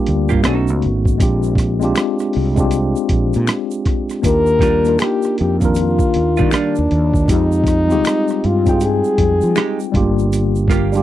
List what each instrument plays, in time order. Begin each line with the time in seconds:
Already playing: tine electric piano G3 A#3 D4 F4 G4
0.06 fretless electric bass D2, closed hi-hat
0.29 hollow-body jazz guitar A#3 F4 G4, kick, shaker
0.33 fretless electric bass G2
0.42 fretless electric bass B1, tine electric piano A3 B3 C#4 D4, hollow-body jazz guitar C#4 D#4 A4, finger snap, cross-stick, closed hi-hat, shaker
0.47 tine electric piano F#4
0.52 tine electric piano D#4
0.68 fretless electric bass C#2, shaker
0.82 fretless electric bass G#1, closed hi-hat
1.05 kick, shaker
1.18 fretless electric bass A#1, tine electric piano G#3 C4 D4 F4, kick, closed hi-hat, shaker
1.22 tine electric piano G4
1.43 shaker
1.55 kick, cross-stick, closed hi-hat, shaker
1.80 tine electric piano G#3 C4 D4 F4, closed hi-hat, shaker
1.85 tine electric piano G4
1.96 finger snap, cross-stick, closed hi-hat, shaker
2.19 cross-stick, shaker
2.33 fretless electric bass C2, open hi-hat
2.55 tine electric piano G#3 C4 D4 F4, kick, closed hi-hat, shaker
2.60 tine electric piano G4
2.71 closed hi-hat, shaker
2.96 shaker
3.09 fretless electric bass A#1, kick, closed hi-hat
3.33 fretless electric bass A#2, closed hi-hat, shaker
3.47 finger snap, cross-stick, closed hi-hat, shaker
3.71 shaker
3.85 kick, cross-stick, closed hi-hat
4.09 cross-stick, closed hi-hat, shaker
4.22 fretless electric bass D#2, tine electric piano A#3 D4 D#4 F4, french horn A#4, kick, closed hi-hat, shaker
4.27 tine electric piano G4
4.47 shaker
4.59 hollow-body jazz guitar G3 D4 F4, kick, cross-stick, closed hi-hat, shaker
4.84 tine electric piano A#3 D4 D#4 F4, closed hi-hat, shaker
4.89 tine electric piano A#4
4.99 french horn G4, finger snap, cross-stick, closed hi-hat, shaker
5.22 cross-stick, shaker
5.38 fretless electric bass F2, french horn G4, closed hi-hat
5.61 tine electric piano D#3 A#3 D4 F4, kick, closed hi-hat, shaker
5.65 tine electric piano A#4
5.75 french horn F4, closed hi-hat, shaker
5.99 kick, shaker
6.14 fretless electric bass D#2, closed hi-hat
6.37 hollow-body jazz guitar G3 D4 F4, kick, shaker
6.41 fretless electric bass D#3
6.51 hollow-body jazz guitar G3 D4 F4, french horn D4, finger snap, cross-stick, closed hi-hat, shaker
6.76 fretless electric bass D#2, shaker
6.91 fretless electric bass D#2, closed hi-hat
7.13 kick, shaker
7.26 fretless electric bass F2, tine electric piano G#3 C4 D#4 F4, french horn D#4, kick, closed hi-hat, shaker
7.31 tine electric piano G4
7.52 shaker
7.64 kick, closed hi-hat, shaker
7.68 cross-stick
7.87 tine electric piano G3 C4 D#4 F4, shaker
7.92 tine electric piano G#3 G4, closed hi-hat
8.05 finger snap, cross-stick, closed hi-hat, shaker
8.28 cross-stick, shaker
8.44 fretless electric bass G2, french horn F4, closed hi-hat
8.64 tine electric piano G3 C4 D#4 F4, kick, closed hi-hat, shaker
8.69 tine electric piano G#4 G5
8.80 french horn G#4, closed hi-hat, shaker
9.04 shaker
9.18 fretless electric bass F2, kick, closed hi-hat
9.41 fretless electric bass F3, shaker
9.56 hollow-body jazz guitar G#3 D#4 G4, finger snap, cross-stick, closed hi-hat, shaker
9.80 shaker
9.92 fretless electric bass G1, tine electric piano G3 G#3 D4 F4, kick, closed hi-hat
9.97 tine electric piano A#3 G4
10.19 shaker
10.33 closed hi-hat, shaker
10.56 shaker
10.68 hollow-body jazz guitar A#3 F4, kick, closed hi-hat, shaker
10.72 hollow-body jazz guitar G4, cross-stick
10.92 tine electric piano G3 G#3 D4 F4, closed hi-hat, shaker
10.97 tine electric piano G4